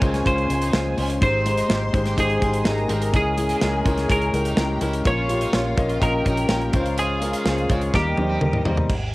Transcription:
Already playing: C#3 F4 G#4 A#4 C5 C#5 G#5
0.00 C#2 G#3 C4 C#4 F4 C5, kick, closed hi-hat
0.14 snare, closed hi-hat
0.25 C#2 G#3 C#4 F4 C5, kick, closed hi-hat
0.38 closed hi-hat
0.48 C#2 G#3 C#4 F4 C#5, closed hi-hat
0.62 D#4, closed hi-hat
0.73 C#2 G#3 C#4 F4 C5, snare
0.97 C#2 G#3 C#4 F4 C5, open hi-hat
1.10 closed hi-hat
1.21 G#1 G#2 G#3 C4 D#4 G4 C5 C6, kick, closed hi-hat
1.45 G#3 D#4 G4 C5, closed hi-hat
1.57 D#4, closed hi-hat
1.69 G#1 G#3 D#4 G4 C5, snare
1.93 G#1 G#3 D#4 G4 C5, kick, closed hi-hat
2.06 G4, snare, closed hi-hat
2.17 G#1 G#3 D#4 G4 G#4 C5, kick, closed hi-hat
2.30 closed hi-hat
2.41 G#1 G#3 D#4 F4 G4 C5, kick, closed hi-hat
2.53 closed hi-hat
2.65 G#1 G#3 D#4 G4 A#4 D#5 A#5, snare
2.78 closed hi-hat
2.88 G#1 G#3 C4 D#4 G4 A#4, closed hi-hat
3.02 closed hi-hat
3.13 C#2 C#3 G#3 C#4 E4 G#4 A#4 G#5, kick, closed hi-hat
3.37 G#3 C#4 E4 G#4, closed hi-hat
3.49 A#3, closed hi-hat
3.61 C#2 G#3 C#4 E4 A#4, snare
3.85 C#2 G#3 C4 C#4 E4 A#4, kick, closed hi-hat
3.97 snare, closed hi-hat
4.09 C#2 G#3 C#4 E4 G#4 A#4, kick, closed hi-hat
4.22 closed hi-hat
4.33 C#2 G#3 C#4 E4 G4 A#4 G5, closed hi-hat
4.45 D#4, closed hi-hat
4.57 C#2 G#3 C#4 E4 A#4, snare
4.81 C#2 G#3 C#4 E4 A#4, closed hi-hat
4.93 closed hi-hat
5.05 A#1 A#2 A#3 C#4 F4 C#5 F5, kick, closed hi-hat
5.28 A#3 C#4 F4 G4, closed hi-hat
5.41 D#4, closed hi-hat
5.53 A#1 A#3 C#4 F4 C#5, snare
5.76 A#1 A#3 C#4 F4 D#5, kick, closed hi-hat
5.89 F4, closed hi-hat
6.01 A#1 A#3 C#4 F4 G4 A#4 D#5 G5, kick, closed hi-hat
6.25 A#1 A#3 C#4 D#4 F4 C#5, kick, closed hi-hat
6.37 closed hi-hat
6.49 A#1 A#3 C#4 F4 A#4, snare
6.61 closed hi-hat
6.73 C#2 C#3 G#3 C4 C#4 F4 C5 F5, kick, closed hi-hat
6.86 closed hi-hat
6.97 C4 G#4, closed hi-hat
7.21 G#3 C#4 F4 A#4, closed hi-hat
7.33 C#4, closed hi-hat
7.45 C#2 G#3 C#4 F4 C5, snare
7.58 closed hi-hat
7.69 C#2 G#3 C4 C#4 F4 C#5, kick, closed hi-hat
7.81 closed hi-hat
7.93 D#2 D#3 G3 A#3 D#4 G4 A#4 D#5, kick, snare
8.17 D#2 G3 A#3 D#4 C5, high tom
8.29 C4
8.41 D#2 G3 A#3 D#4 A#4, mid tom
8.53 mid tom
8.65 D#2 G3 A#3 D#4 C5, floor tom
8.77 floor tom
8.90 G#1, kick, crash

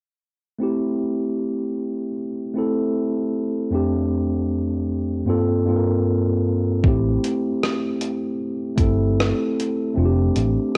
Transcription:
0.59 A3 C4 E4
0.63 G4
2.54 A3 C4 E4
2.58 A4
3.70 F2 A3 C4 D4
3.74 G4
5.25 G2 A#3 C4 F4
5.30 A4
5.65 G2 A#3 C4 F4
5.70 A4
5.76 A#4
6.84 A1 A3 C4 E4, kick
6.88 G4
7.24 closed hi-hat
7.63 cross-stick
8.01 closed hi-hat
8.76 G1 A3 C4 E4, kick, closed hi-hat
8.80 A4
9.20 cross-stick
9.60 closed hi-hat
9.94 F1 A3 C4 D4
9.99 F4
10.05 G4
10.36 A1, closed hi-hat

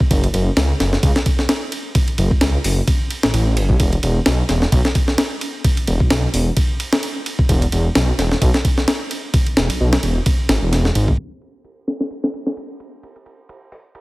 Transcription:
0.00 kick
0.11 F#1, kick, ride
0.24 ride
0.34 F#1, ride
0.57 C#2, snare, ride
0.80 F#1, snare, ride
0.93 snare
1.03 C#2, kick, ride
1.16 snare
1.26 kick, ride
1.39 snare
1.49 snare, ride
1.72 ride
1.95 kick, ride
2.08 ride
2.18 F#1, ride
2.31 C#2, kick
2.41 C#2, snare, ride
2.64 F#1, open hi-hat
2.88 kick, ride
3.10 ride
3.23 A1, snare
3.34 A1, ride
3.57 F#1, ride
3.69 C#2, kick
3.80 E1, kick, ride
3.93 ride
4.03 E1, ride
4.26 B1, snare, ride
4.49 E1, snare, ride
4.62 snare
4.72 B1, kick, ride
4.85 snare
4.95 kick, ride
5.08 snare
5.18 snare, ride
5.41 ride
5.64 kick, ride
5.77 ride
5.87 E1, ride
6.00 B1, kick
6.10 B1, snare, ride
6.34 E1, open hi-hat
6.57 kick, ride
6.80 ride
6.93 snare
7.03 ride
7.26 ride
7.39 kick
7.49 E1, kick, ride
7.62 ride
7.72 E1, ride
7.95 B1, snare, ride
8.18 E1, snare, ride
8.31 snare
8.42 B1, kick, ride
8.54 snare
8.65 kick, ride
8.78 snare
8.88 snare, ride
9.11 ride
9.34 kick, ride
9.47 ride
9.57 E1, snare
9.70 B1, ride
9.80 B1
9.93 snare
10.03 E1, ride
10.26 kick, ride
10.49 G#1, snare, ride
10.62 E1
10.73 snare, ride
10.85 snare
10.95 G#1, ride
11.08 kick
11.18 ride
11.31 ride
11.42 ride
11.64 ride
11.88 snare, ride
12.00 snare
12.11 ride
12.24 snare
12.34 ride
12.46 snare
12.57 ride
12.80 ride
13.03 ride
13.16 ride
13.26 ride
13.49 ride
13.72 open hi-hat
13.95 ride

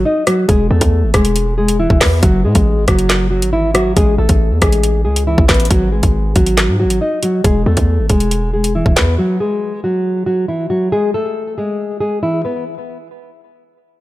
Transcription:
0.05 D#4 D#5
0.27 F#3 F#4, cross-stick, closed hi-hat
0.48 E1 G#3 G#4, kick, closed hi-hat
0.71 E2 A3 A4
0.81 E2, kick, closed hi-hat
1.03 G#1
1.14 E1 G#3 G#4, kick, cross-stick, closed hi-hat
1.25 closed hi-hat
1.36 closed hi-hat
1.58 G#3 G#4
1.68 closed hi-hat
1.80 E3 E4
1.90 E1, kick
2.01 E2 B3 B4, kick, cross-stick, snare, clap, open hi-hat
2.22 F#1 F#3 F#4, kick, closed hi-hat
2.44 A2 G#3 G#4
2.55 A1, kick, closed hi-hat
2.77 G#1
2.88 F#1 F#3 F#4, kick, cross-stick, closed hi-hat
2.99 closed hi-hat
3.10 snare, clap, closed hi-hat
3.31 F#3 F#4
3.42 G#1, closed hi-hat
3.53 E3 E4
3.74 F#3 F#4, cross-stick, closed hi-hat
3.97 A1 G#3 G#4, kick, closed hi-hat
4.18 A1 A3 A4
4.29 A1, kick, closed hi-hat
4.51 E2
4.62 A1 G#3 G#4, kick, cross-stick, closed hi-hat
4.73 closed hi-hat
4.83 closed hi-hat
5.05 C#2 G#3 G#4
5.16 closed hi-hat
5.27 E3 E4
5.38 A1, kick
5.49 A1 B3 B4, kick, cross-stick, snare, clap, closed hi-hat
5.54 closed hi-hat
5.60 closed hi-hat
5.65 closed hi-hat
5.71 G#1 F#3 F#4, kick, closed hi-hat
5.92 G#3 G#4
6.03 G#1, kick, closed hi-hat
6.36 G#1 F#3 F#4, kick, closed hi-hat
6.46 closed hi-hat
6.57 snare, clap, closed hi-hat
6.68 G#2
6.80 F#3 F#4
6.85 G#1
6.90 closed hi-hat
7.01 D#4 D#5
7.23 F#3 F#4, closed hi-hat
7.44 E1 G#3 G#4, kick, closed hi-hat
7.66 E2 A3 A4
7.77 E2, kick, closed hi-hat
7.99 G#1
8.10 E1 G#3 G#4, kick, closed hi-hat
8.20 closed hi-hat
8.31 closed hi-hat
8.53 G#3 G#4
8.64 closed hi-hat
8.75 E3 E4
8.86 E1, kick
8.96 E2 B3 B4, kick, snare, clap, closed hi-hat
9.18 F#3 F#4
9.40 G#3 G#4
9.84 F#3 F#4
10.26 F#3 F#4
10.48 E3 E4
10.70 F#3 F#4
10.92 G#3 G#4
11.14 A3 A4
11.58 G#3 G#4
12.00 G#3 G#4
12.23 E3 E4
12.45 B3 B4

